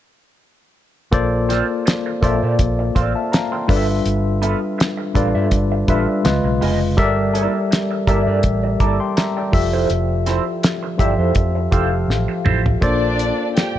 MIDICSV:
0, 0, Header, 1, 8, 480
1, 0, Start_track
1, 0, Tempo, 731707
1, 738, Time_signature, 4, 2, 24, 8
1, 9046, End_track
2, 0, Start_track
2, 0, Title_t, "Violin section"
2, 0, Program_c, 0, 48
2, 8411, Note_on_c, 0, 62, 88
2, 8411, Note_on_c, 0, 74, 94
2, 8865, Note_off_c, 0, 62, 0
2, 8866, Note_off_c, 0, 74, 0
2, 8891, Note_on_c, 0, 79, 67
2, 8893, Note_on_c, 0, 67, 63
2, 9046, Note_off_c, 0, 67, 0
2, 9046, Note_off_c, 0, 79, 0
2, 9046, End_track
3, 0, Start_track
3, 0, Title_t, "Tine electric piano"
3, 0, Program_c, 1, 4
3, 731, Note_on_c, 1, 58, 94
3, 734, Note_on_c, 1, 65, 87
3, 737, Note_on_c, 1, 69, 90
3, 741, Note_on_c, 1, 72, 91
3, 746, Note_on_c, 1, 74, 102
3, 869, Control_c, 1, 64, 127
3, 1213, Note_off_c, 1, 58, 0
3, 1215, Note_off_c, 1, 65, 0
3, 1216, Note_off_c, 1, 69, 0
3, 1218, Note_off_c, 1, 72, 0
3, 1221, Note_off_c, 1, 74, 0
3, 1452, Note_on_c, 1, 58, 72
3, 1458, Note_on_c, 1, 65, 62
3, 1458, Note_on_c, 1, 69, 70
3, 1463, Note_on_c, 1, 72, 65
3, 1466, Note_on_c, 1, 74, 82
3, 1941, Note_off_c, 1, 72, 0
3, 1942, Note_off_c, 1, 74, 0
3, 1943, Note_on_c, 1, 77, 58
3, 1948, Note_on_c, 1, 72, 45
3, 2064, Note_off_c, 1, 77, 0
3, 2066, Note_off_c, 1, 72, 0
3, 2069, Note_on_c, 1, 81, 58
3, 2074, Note_on_c, 1, 76, 50
3, 2100, Note_off_c, 1, 58, 0
3, 2102, Note_off_c, 1, 65, 0
3, 2103, Note_off_c, 1, 69, 0
3, 2174, Note_off_c, 1, 81, 0
3, 2176, Note_off_c, 1, 76, 0
3, 2178, Note_on_c, 1, 82, 59
3, 2182, Note_on_c, 1, 77, 51
3, 2301, Note_off_c, 1, 82, 0
3, 2303, Note_off_c, 1, 77, 0
3, 2309, Note_on_c, 1, 84, 52
3, 2313, Note_on_c, 1, 79, 47
3, 2412, Note_on_c, 1, 55, 73
3, 2414, Note_on_c, 1, 62, 69
3, 2417, Note_on_c, 1, 65, 67
3, 2419, Note_on_c, 1, 69, 66
3, 2423, Note_on_c, 1, 71, 70
3, 2427, Control_c, 1, 64, 0
3, 2427, Note_on_c, 1, 74, 66
3, 2467, Note_on_c, 1, 76, 76
3, 2468, Note_off_c, 1, 74, 0
3, 2536, Control_c, 1, 64, 127
3, 2537, Note_off_c, 1, 84, 0
3, 2538, Note_off_c, 1, 79, 0
3, 3187, Note_off_c, 1, 55, 0
3, 3188, Note_off_c, 1, 62, 0
3, 3189, Note_off_c, 1, 65, 0
3, 3190, Note_off_c, 1, 69, 0
3, 3192, Note_off_c, 1, 71, 0
3, 3214, Note_off_c, 1, 76, 0
3, 3373, Note_on_c, 1, 55, 73
3, 3376, Note_on_c, 1, 62, 68
3, 3379, Note_on_c, 1, 65, 67
3, 3380, Note_on_c, 1, 69, 69
3, 3385, Note_on_c, 1, 71, 67
3, 3386, Note_on_c, 1, 74, 85
3, 3701, Note_off_c, 1, 55, 0
3, 3702, Note_off_c, 1, 62, 0
3, 3704, Note_off_c, 1, 65, 0
3, 3704, Note_off_c, 1, 69, 0
3, 3707, Note_off_c, 1, 71, 0
3, 3707, Note_off_c, 1, 74, 0
3, 3855, Note_on_c, 1, 55, 75
3, 3858, Note_on_c, 1, 62, 68
3, 3861, Note_on_c, 1, 65, 69
3, 3863, Note_on_c, 1, 69, 67
3, 3865, Note_on_c, 1, 71, 68
3, 3870, Note_on_c, 1, 76, 81
3, 4089, Note_off_c, 1, 65, 0
3, 4090, Note_on_c, 1, 49, 75
3, 4092, Note_off_c, 1, 71, 0
3, 4094, Note_on_c, 1, 56, 69
3, 4096, Note_off_c, 1, 55, 0
3, 4097, Note_on_c, 1, 65, 73
3, 4098, Note_off_c, 1, 62, 0
3, 4100, Note_off_c, 1, 69, 0
3, 4100, Note_on_c, 1, 71, 69
3, 4104, Note_off_c, 1, 76, 0
3, 4105, Note_on_c, 1, 75, 79
3, 4106, Control_c, 1, 64, 0
3, 4227, Control_c, 1, 64, 127
3, 4485, Note_off_c, 1, 49, 0
3, 4487, Note_off_c, 1, 56, 0
3, 4488, Note_off_c, 1, 65, 0
3, 4490, Note_off_c, 1, 71, 0
3, 4492, Note_off_c, 1, 75, 0
3, 4571, Note_on_c, 1, 55, 95
3, 4573, Note_on_c, 1, 67, 91
3, 4575, Note_on_c, 1, 69, 89
3, 4579, Note_on_c, 1, 70, 90
3, 4581, Note_on_c, 1, 74, 88
3, 4584, Control_c, 1, 64, 0
3, 4586, Note_on_c, 1, 76, 107
3, 4717, Control_c, 1, 64, 127
3, 5052, Note_off_c, 1, 55, 0
3, 5053, Note_off_c, 1, 67, 0
3, 5054, Note_off_c, 1, 69, 0
3, 5056, Note_off_c, 1, 70, 0
3, 5057, Note_off_c, 1, 74, 0
3, 5059, Note_off_c, 1, 76, 0
3, 5292, Note_on_c, 1, 55, 78
3, 5296, Note_on_c, 1, 67, 72
3, 5297, Note_on_c, 1, 69, 66
3, 5302, Note_on_c, 1, 70, 66
3, 5304, Note_on_c, 1, 74, 68
3, 5305, Note_on_c, 1, 76, 81
3, 5775, Note_on_c, 1, 86, 56
3, 5779, Note_on_c, 1, 81, 47
3, 5780, Note_off_c, 1, 74, 0
3, 5780, Note_off_c, 1, 76, 0
3, 5898, Note_off_c, 1, 86, 0
3, 5900, Note_off_c, 1, 81, 0
3, 5904, Note_on_c, 1, 84, 65
3, 5909, Note_on_c, 1, 79, 55
3, 5938, Note_off_c, 1, 55, 0
3, 5940, Note_off_c, 1, 67, 0
3, 5941, Note_off_c, 1, 69, 0
3, 5943, Note_off_c, 1, 70, 0
3, 6010, Note_off_c, 1, 84, 0
3, 6012, Note_off_c, 1, 79, 0
3, 6015, Note_on_c, 1, 82, 59
3, 6018, Note_on_c, 1, 76, 51
3, 6138, Note_off_c, 1, 82, 0
3, 6140, Note_off_c, 1, 76, 0
3, 6144, Note_on_c, 1, 79, 54
3, 6148, Note_on_c, 1, 74, 45
3, 6246, Note_on_c, 1, 53, 75
3, 6246, Note_on_c, 1, 65, 65
3, 6251, Note_on_c, 1, 67, 64
3, 6255, Note_on_c, 1, 69, 70
3, 6258, Note_on_c, 1, 76, 81
3, 6264, Control_c, 1, 64, 0
3, 6372, Note_off_c, 1, 79, 0
3, 6374, Note_off_c, 1, 74, 0
3, 6389, Control_c, 1, 64, 127
3, 7022, Note_off_c, 1, 53, 0
3, 7022, Note_off_c, 1, 65, 0
3, 7024, Note_off_c, 1, 67, 0
3, 7026, Note_off_c, 1, 69, 0
3, 7028, Note_off_c, 1, 76, 0
3, 7203, Note_on_c, 1, 53, 70
3, 7207, Note_on_c, 1, 65, 66
3, 7211, Note_on_c, 1, 67, 70
3, 7215, Note_on_c, 1, 69, 66
3, 7215, Note_on_c, 1, 76, 81
3, 7533, Note_off_c, 1, 53, 0
3, 7535, Note_off_c, 1, 65, 0
3, 7537, Note_off_c, 1, 67, 0
3, 7539, Note_off_c, 1, 69, 0
3, 7540, Note_off_c, 1, 76, 0
3, 7680, Note_on_c, 1, 53, 71
3, 7685, Note_on_c, 1, 65, 65
3, 7687, Note_on_c, 1, 67, 69
3, 7692, Note_on_c, 1, 69, 67
3, 7694, Note_on_c, 1, 77, 79
3, 8165, Note_off_c, 1, 53, 0
3, 8167, Note_off_c, 1, 65, 0
3, 8169, Note_off_c, 1, 67, 0
3, 8171, Note_off_c, 1, 69, 0
3, 8172, Note_off_c, 1, 77, 0
3, 8405, Note_on_c, 1, 58, 85
3, 8408, Note_on_c, 1, 65, 81
3, 8412, Note_on_c, 1, 69, 80
3, 8415, Note_on_c, 1, 72, 80
3, 8419, Note_on_c, 1, 74, 98
3, 8423, Control_c, 1, 64, 0
3, 8543, Control_c, 1, 64, 127
3, 8887, Note_off_c, 1, 58, 0
3, 8889, Note_off_c, 1, 65, 0
3, 8891, Note_off_c, 1, 69, 0
3, 8892, Note_off_c, 1, 72, 0
3, 8894, Note_off_c, 1, 74, 0
3, 9046, End_track
4, 0, Start_track
4, 0, Title_t, "Clean electric guitar"
4, 0, Program_c, 2, 27
4, 977, Note_on_c, 2, 60, 69
4, 982, Note_on_c, 2, 65, 63
4, 985, Note_on_c, 2, 69, 68
4, 988, Note_on_c, 2, 74, 69
4, 1085, Note_off_c, 2, 60, 0
4, 1088, Note_off_c, 2, 65, 0
4, 1090, Note_off_c, 2, 69, 0
4, 1091, Note_off_c, 2, 74, 0
4, 1460, Note_on_c, 2, 60, 45
4, 1464, Note_on_c, 2, 65, 47
4, 1467, Note_on_c, 2, 69, 53
4, 1471, Note_on_c, 2, 76, 53
4, 1544, Note_off_c, 2, 60, 0
4, 1546, Note_off_c, 2, 65, 0
4, 1547, Note_off_c, 2, 69, 0
4, 1549, Note_off_c, 2, 76, 0
4, 1591, Note_on_c, 2, 74, 52
4, 1595, Note_on_c, 2, 69, 50
4, 1598, Note_on_c, 2, 65, 41
4, 1602, Note_on_c, 2, 60, 44
4, 1661, Note_off_c, 2, 74, 0
4, 1664, Note_off_c, 2, 69, 0
4, 1665, Note_off_c, 2, 65, 0
4, 1667, Note_off_c, 2, 60, 0
4, 1937, Note_on_c, 2, 60, 63
4, 1940, Note_on_c, 2, 65, 57
4, 1945, Note_on_c, 2, 69, 62
4, 1948, Note_on_c, 2, 74, 63
4, 2046, Note_off_c, 2, 60, 0
4, 2047, Note_off_c, 2, 65, 0
4, 2050, Note_off_c, 2, 69, 0
4, 2051, Note_off_c, 2, 74, 0
4, 2415, Note_on_c, 2, 59, 66
4, 2419, Note_on_c, 2, 65, 60
4, 2424, Note_on_c, 2, 69, 71
4, 2426, Note_on_c, 2, 76, 72
4, 2525, Note_off_c, 2, 59, 0
4, 2527, Note_off_c, 2, 65, 0
4, 2529, Note_off_c, 2, 69, 0
4, 2530, Note_off_c, 2, 76, 0
4, 2897, Note_on_c, 2, 59, 72
4, 2900, Note_on_c, 2, 65, 70
4, 2903, Note_on_c, 2, 69, 77
4, 2907, Note_on_c, 2, 76, 72
4, 3006, Note_off_c, 2, 59, 0
4, 3007, Note_off_c, 2, 65, 0
4, 3009, Note_off_c, 2, 69, 0
4, 3011, Note_off_c, 2, 76, 0
4, 3377, Note_on_c, 2, 59, 50
4, 3380, Note_on_c, 2, 65, 45
4, 3383, Note_on_c, 2, 69, 48
4, 3386, Note_on_c, 2, 77, 54
4, 3462, Note_off_c, 2, 59, 0
4, 3463, Note_off_c, 2, 65, 0
4, 3465, Note_off_c, 2, 69, 0
4, 3467, Note_off_c, 2, 77, 0
4, 3507, Note_on_c, 2, 76, 49
4, 3510, Note_on_c, 2, 69, 47
4, 3514, Note_on_c, 2, 65, 44
4, 3517, Note_on_c, 2, 59, 40
4, 3579, Note_off_c, 2, 76, 0
4, 3581, Note_off_c, 2, 69, 0
4, 3583, Note_off_c, 2, 65, 0
4, 3584, Note_off_c, 2, 59, 0
4, 3860, Note_on_c, 2, 59, 62
4, 3864, Note_on_c, 2, 65, 64
4, 3868, Note_on_c, 2, 69, 58
4, 3871, Note_on_c, 2, 76, 67
4, 3967, Note_off_c, 2, 59, 0
4, 3969, Note_off_c, 2, 65, 0
4, 3971, Note_off_c, 2, 69, 0
4, 3972, Note_off_c, 2, 76, 0
4, 4337, Note_on_c, 2, 59, 75
4, 4342, Note_on_c, 2, 65, 71
4, 4346, Note_on_c, 2, 68, 78
4, 4348, Note_on_c, 2, 75, 74
4, 4445, Note_off_c, 2, 59, 0
4, 4448, Note_off_c, 2, 65, 0
4, 4450, Note_off_c, 2, 68, 0
4, 4451, Note_off_c, 2, 75, 0
4, 4812, Note_on_c, 2, 58, 64
4, 4818, Note_on_c, 2, 64, 70
4, 4820, Note_on_c, 2, 69, 74
4, 4823, Note_on_c, 2, 74, 74
4, 4954, Note_off_c, 2, 58, 0
4, 4957, Note_off_c, 2, 64, 0
4, 4958, Note_off_c, 2, 69, 0
4, 4960, Note_off_c, 2, 74, 0
4, 5295, Note_on_c, 2, 58, 50
4, 5300, Note_on_c, 2, 64, 56
4, 5303, Note_on_c, 2, 69, 61
4, 5307, Note_on_c, 2, 76, 57
4, 5380, Note_off_c, 2, 58, 0
4, 5383, Note_off_c, 2, 64, 0
4, 5384, Note_off_c, 2, 69, 0
4, 5386, Note_off_c, 2, 76, 0
4, 5423, Note_on_c, 2, 74, 53
4, 5427, Note_on_c, 2, 69, 46
4, 5431, Note_on_c, 2, 64, 42
4, 5434, Note_on_c, 2, 58, 44
4, 5496, Note_off_c, 2, 74, 0
4, 5499, Note_off_c, 2, 69, 0
4, 5500, Note_off_c, 2, 64, 0
4, 5502, Note_off_c, 2, 58, 0
4, 5774, Note_on_c, 2, 58, 63
4, 5777, Note_on_c, 2, 64, 68
4, 5779, Note_on_c, 2, 69, 68
4, 5784, Note_on_c, 2, 74, 70
4, 5883, Note_off_c, 2, 58, 0
4, 5884, Note_off_c, 2, 64, 0
4, 5886, Note_off_c, 2, 69, 0
4, 5888, Note_off_c, 2, 74, 0
4, 6385, Note_on_c, 2, 72, 59
4, 6389, Note_on_c, 2, 69, 59
4, 6393, Note_on_c, 2, 64, 52
4, 6396, Note_on_c, 2, 60, 52
4, 6477, Note_off_c, 2, 72, 0
4, 6479, Note_off_c, 2, 69, 0
4, 6481, Note_off_c, 2, 64, 0
4, 6483, Note_off_c, 2, 60, 0
4, 6733, Note_on_c, 2, 60, 63
4, 6737, Note_on_c, 2, 64, 71
4, 6740, Note_on_c, 2, 69, 71
4, 6743, Note_on_c, 2, 72, 74
4, 6842, Note_off_c, 2, 60, 0
4, 6844, Note_off_c, 2, 64, 0
4, 6846, Note_off_c, 2, 69, 0
4, 6847, Note_off_c, 2, 72, 0
4, 7213, Note_on_c, 2, 60, 51
4, 7217, Note_on_c, 2, 64, 53
4, 7220, Note_on_c, 2, 69, 59
4, 7223, Note_on_c, 2, 74, 62
4, 7298, Note_off_c, 2, 60, 0
4, 7300, Note_off_c, 2, 64, 0
4, 7302, Note_off_c, 2, 69, 0
4, 7303, Note_off_c, 2, 74, 0
4, 7340, Note_on_c, 2, 72, 46
4, 7345, Note_on_c, 2, 69, 46
4, 7348, Note_on_c, 2, 64, 42
4, 7351, Note_on_c, 2, 60, 40
4, 7414, Note_off_c, 2, 72, 0
4, 7416, Note_off_c, 2, 69, 0
4, 7418, Note_off_c, 2, 64, 0
4, 7419, Note_off_c, 2, 60, 0
4, 7689, Note_on_c, 2, 60, 62
4, 7693, Note_on_c, 2, 64, 64
4, 7697, Note_on_c, 2, 69, 67
4, 7701, Note_on_c, 2, 72, 64
4, 7800, Note_off_c, 2, 60, 0
4, 7802, Note_off_c, 2, 64, 0
4, 7804, Note_off_c, 2, 69, 0
4, 7806, Note_off_c, 2, 72, 0
4, 8166, Note_on_c, 2, 60, 65
4, 8171, Note_on_c, 2, 64, 71
4, 8174, Note_on_c, 2, 69, 69
4, 8177, Note_on_c, 2, 72, 74
4, 8278, Note_off_c, 2, 60, 0
4, 8280, Note_off_c, 2, 64, 0
4, 8281, Note_off_c, 2, 69, 0
4, 8283, Note_off_c, 2, 72, 0
4, 9046, End_track
5, 0, Start_track
5, 0, Title_t, "Fingered electric bass"
5, 0, Program_c, 3, 33
5, 739, Note_on_c, 3, 34, 89
5, 1055, Note_off_c, 3, 34, 0
5, 1461, Note_on_c, 3, 34, 74
5, 1571, Note_off_c, 3, 34, 0
5, 1593, Note_on_c, 3, 46, 79
5, 1685, Note_off_c, 3, 46, 0
5, 1702, Note_on_c, 3, 34, 82
5, 1906, Note_off_c, 3, 34, 0
5, 1941, Note_on_c, 3, 33, 83
5, 2051, Note_off_c, 3, 33, 0
5, 2422, Note_on_c, 3, 31, 85
5, 2626, Note_off_c, 3, 31, 0
5, 2660, Note_on_c, 3, 31, 90
5, 2975, Note_off_c, 3, 31, 0
5, 3381, Note_on_c, 3, 33, 77
5, 3491, Note_off_c, 3, 33, 0
5, 3510, Note_on_c, 3, 43, 84
5, 3603, Note_off_c, 3, 43, 0
5, 3618, Note_on_c, 3, 31, 83
5, 3823, Note_off_c, 3, 31, 0
5, 3857, Note_on_c, 3, 33, 76
5, 3968, Note_off_c, 3, 33, 0
5, 4100, Note_on_c, 3, 37, 97
5, 4210, Note_off_c, 3, 37, 0
5, 4225, Note_on_c, 3, 35, 79
5, 4320, Note_off_c, 3, 35, 0
5, 4338, Note_on_c, 3, 29, 79
5, 4578, Note_off_c, 3, 29, 0
5, 4578, Note_on_c, 3, 31, 91
5, 4893, Note_off_c, 3, 31, 0
5, 5297, Note_on_c, 3, 31, 76
5, 5408, Note_off_c, 3, 31, 0
5, 5424, Note_on_c, 3, 43, 79
5, 5519, Note_off_c, 3, 43, 0
5, 5536, Note_on_c, 3, 33, 83
5, 5741, Note_off_c, 3, 33, 0
5, 5774, Note_on_c, 3, 31, 70
5, 5886, Note_off_c, 3, 31, 0
5, 6254, Note_on_c, 3, 29, 88
5, 6460, Note_off_c, 3, 29, 0
5, 6495, Note_on_c, 3, 29, 89
5, 6811, Note_off_c, 3, 29, 0
5, 7211, Note_on_c, 3, 31, 76
5, 7323, Note_off_c, 3, 31, 0
5, 7339, Note_on_c, 3, 41, 76
5, 7435, Note_off_c, 3, 41, 0
5, 7449, Note_on_c, 3, 41, 90
5, 7657, Note_off_c, 3, 41, 0
5, 7690, Note_on_c, 3, 29, 75
5, 7897, Note_off_c, 3, 29, 0
5, 7925, Note_on_c, 3, 33, 83
5, 8039, Note_off_c, 3, 33, 0
5, 8167, Note_on_c, 3, 33, 78
5, 8375, Note_off_c, 3, 33, 0
5, 8410, Note_on_c, 3, 34, 77
5, 8727, Note_off_c, 3, 34, 0
5, 9046, End_track
6, 0, Start_track
6, 0, Title_t, "Muted clean electric guitar strokes"
6, 1218, Note_on_c, 9, 29, 38
6, 1283, Note_off_c, 9, 29, 0
6, 1351, Note_on_c, 9, 29, 37
6, 1417, Note_off_c, 9, 29, 0
6, 1699, Note_on_c, 9, 29, 33
6, 1765, Note_off_c, 9, 29, 0
6, 1830, Note_on_c, 9, 29, 38
6, 1896, Note_off_c, 9, 29, 0
6, 2309, Note_on_c, 9, 29, 37
6, 2375, Note_off_c, 9, 29, 0
6, 2549, Note_on_c, 9, 29, 33
6, 2615, Note_off_c, 9, 29, 0
6, 3136, Note_on_c, 9, 29, 32
6, 3202, Note_off_c, 9, 29, 0
6, 3263, Note_on_c, 9, 29, 31
6, 3329, Note_off_c, 9, 29, 0
6, 3622, Note_on_c, 9, 29, 29
6, 3687, Note_off_c, 9, 29, 0
6, 3750, Note_on_c, 9, 29, 33
6, 3816, Note_off_c, 9, 29, 0
6, 3990, Note_on_c, 9, 29, 37
6, 4056, Note_off_c, 9, 29, 0
6, 4228, Note_on_c, 9, 29, 33
6, 4293, Note_off_c, 9, 29, 0
6, 4467, Note_on_c, 9, 29, 44
6, 4532, Note_off_c, 9, 29, 0
6, 5057, Note_on_c, 9, 29, 32
6, 5122, Note_off_c, 9, 29, 0
6, 5187, Note_on_c, 9, 29, 35
6, 5252, Note_off_c, 9, 29, 0
6, 5534, Note_on_c, 9, 29, 36
6, 5600, Note_off_c, 9, 29, 0
6, 5664, Note_on_c, 9, 29, 37
6, 5730, Note_off_c, 9, 29, 0
6, 6016, Note_on_c, 9, 29, 25
6, 6082, Note_off_c, 9, 29, 0
6, 6147, Note_on_c, 9, 29, 33
6, 6213, Note_off_c, 9, 29, 0
6, 6974, Note_on_c, 9, 29, 27
6, 7040, Note_off_c, 9, 29, 0
6, 7102, Note_on_c, 9, 29, 36
6, 7168, Note_off_c, 9, 29, 0
6, 7452, Note_on_c, 9, 29, 28
6, 7518, Note_off_c, 9, 29, 0
6, 7579, Note_on_c, 9, 29, 31
6, 7644, Note_off_c, 9, 29, 0
6, 7822, Note_on_c, 9, 29, 37
6, 7887, Note_off_c, 9, 29, 0
6, 8058, Note_on_c, 9, 29, 38
6, 8123, Note_off_c, 9, 29, 0
6, 8298, Note_on_c, 9, 29, 33
6, 8363, Note_off_c, 9, 29, 0
6, 9046, End_track
7, 0, Start_track
7, 0, Title_t, "Muted fingered electric bass strokes"
7, 9023, Note_on_c, 9, 29, 37
7, 9046, Note_off_c, 9, 29, 0
7, 9046, End_track
8, 0, Start_track
8, 0, Title_t, "Drums"
8, 739, Note_on_c, 9, 36, 95
8, 740, Note_on_c, 9, 42, 71
8, 804, Note_off_c, 9, 36, 0
8, 805, Note_off_c, 9, 42, 0
8, 984, Note_on_c, 9, 42, 69
8, 994, Note_on_c, 9, 38, 26
8, 1050, Note_off_c, 9, 42, 0
8, 1060, Note_off_c, 9, 38, 0
8, 1227, Note_on_c, 9, 42, 81
8, 1233, Note_on_c, 9, 38, 91
8, 1293, Note_off_c, 9, 42, 0
8, 1299, Note_off_c, 9, 38, 0
8, 1460, Note_on_c, 9, 36, 76
8, 1467, Note_on_c, 9, 42, 63
8, 1526, Note_off_c, 9, 36, 0
8, 1532, Note_off_c, 9, 42, 0
8, 1699, Note_on_c, 9, 42, 72
8, 1701, Note_on_c, 9, 36, 80
8, 1764, Note_off_c, 9, 42, 0
8, 1766, Note_off_c, 9, 36, 0
8, 1941, Note_on_c, 9, 36, 78
8, 1942, Note_on_c, 9, 42, 65
8, 2007, Note_off_c, 9, 36, 0
8, 2008, Note_off_c, 9, 42, 0
8, 2187, Note_on_c, 9, 42, 79
8, 2192, Note_on_c, 9, 38, 97
8, 2252, Note_off_c, 9, 42, 0
8, 2258, Note_off_c, 9, 38, 0
8, 2421, Note_on_c, 9, 36, 94
8, 2427, Note_on_c, 9, 46, 69
8, 2487, Note_off_c, 9, 36, 0
8, 2493, Note_off_c, 9, 46, 0
8, 2660, Note_on_c, 9, 42, 66
8, 2726, Note_off_c, 9, 42, 0
8, 2903, Note_on_c, 9, 42, 64
8, 2969, Note_off_c, 9, 42, 0
8, 3150, Note_on_c, 9, 42, 80
8, 3156, Note_on_c, 9, 38, 100
8, 3216, Note_off_c, 9, 42, 0
8, 3222, Note_off_c, 9, 38, 0
8, 3381, Note_on_c, 9, 36, 75
8, 3386, Note_on_c, 9, 42, 63
8, 3446, Note_off_c, 9, 36, 0
8, 3452, Note_off_c, 9, 42, 0
8, 3616, Note_on_c, 9, 42, 76
8, 3619, Note_on_c, 9, 36, 78
8, 3682, Note_off_c, 9, 42, 0
8, 3685, Note_off_c, 9, 36, 0
8, 3858, Note_on_c, 9, 42, 60
8, 3859, Note_on_c, 9, 36, 86
8, 3924, Note_off_c, 9, 42, 0
8, 3925, Note_off_c, 9, 36, 0
8, 4099, Note_on_c, 9, 42, 77
8, 4105, Note_on_c, 9, 38, 96
8, 4165, Note_off_c, 9, 42, 0
8, 4171, Note_off_c, 9, 38, 0
8, 4344, Note_on_c, 9, 46, 73
8, 4409, Note_off_c, 9, 46, 0
8, 4578, Note_on_c, 9, 36, 93
8, 4578, Note_on_c, 9, 42, 65
8, 4644, Note_off_c, 9, 36, 0
8, 4644, Note_off_c, 9, 42, 0
8, 4821, Note_on_c, 9, 42, 68
8, 4887, Note_off_c, 9, 42, 0
8, 5066, Note_on_c, 9, 42, 83
8, 5072, Note_on_c, 9, 38, 96
8, 5131, Note_off_c, 9, 42, 0
8, 5138, Note_off_c, 9, 38, 0
8, 5297, Note_on_c, 9, 36, 74
8, 5302, Note_on_c, 9, 42, 67
8, 5363, Note_off_c, 9, 36, 0
8, 5367, Note_off_c, 9, 42, 0
8, 5530, Note_on_c, 9, 42, 74
8, 5536, Note_on_c, 9, 36, 77
8, 5596, Note_off_c, 9, 42, 0
8, 5601, Note_off_c, 9, 36, 0
8, 5773, Note_on_c, 9, 42, 64
8, 5775, Note_on_c, 9, 36, 81
8, 5839, Note_off_c, 9, 42, 0
8, 5840, Note_off_c, 9, 36, 0
8, 6016, Note_on_c, 9, 42, 82
8, 6021, Note_on_c, 9, 38, 93
8, 6081, Note_off_c, 9, 42, 0
8, 6087, Note_off_c, 9, 38, 0
8, 6254, Note_on_c, 9, 36, 95
8, 6260, Note_on_c, 9, 46, 69
8, 6319, Note_off_c, 9, 36, 0
8, 6325, Note_off_c, 9, 46, 0
8, 6493, Note_on_c, 9, 42, 67
8, 6558, Note_off_c, 9, 42, 0
8, 6733, Note_on_c, 9, 42, 66
8, 6743, Note_on_c, 9, 38, 26
8, 6798, Note_off_c, 9, 42, 0
8, 6808, Note_off_c, 9, 38, 0
8, 6976, Note_on_c, 9, 42, 82
8, 6982, Note_on_c, 9, 38, 99
8, 7042, Note_off_c, 9, 42, 0
8, 7048, Note_off_c, 9, 38, 0
8, 7212, Note_on_c, 9, 36, 75
8, 7217, Note_on_c, 9, 42, 63
8, 7277, Note_off_c, 9, 36, 0
8, 7282, Note_off_c, 9, 42, 0
8, 7444, Note_on_c, 9, 42, 74
8, 7450, Note_on_c, 9, 36, 81
8, 7510, Note_off_c, 9, 42, 0
8, 7516, Note_off_c, 9, 36, 0
8, 7690, Note_on_c, 9, 42, 60
8, 7691, Note_on_c, 9, 36, 86
8, 7756, Note_off_c, 9, 36, 0
8, 7756, Note_off_c, 9, 42, 0
8, 7939, Note_on_c, 9, 38, 49
8, 8005, Note_off_c, 9, 38, 0
8, 8172, Note_on_c, 9, 45, 81
8, 8237, Note_off_c, 9, 45, 0
8, 8304, Note_on_c, 9, 43, 74
8, 8369, Note_off_c, 9, 43, 0
8, 8411, Note_on_c, 9, 36, 87
8, 8411, Note_on_c, 9, 42, 62
8, 8477, Note_off_c, 9, 36, 0
8, 8477, Note_off_c, 9, 42, 0
8, 8654, Note_on_c, 9, 42, 63
8, 8719, Note_off_c, 9, 42, 0
8, 8899, Note_on_c, 9, 42, 73
8, 8905, Note_on_c, 9, 38, 90
8, 8965, Note_off_c, 9, 42, 0
8, 8971, Note_off_c, 9, 38, 0
8, 9046, End_track
0, 0, End_of_file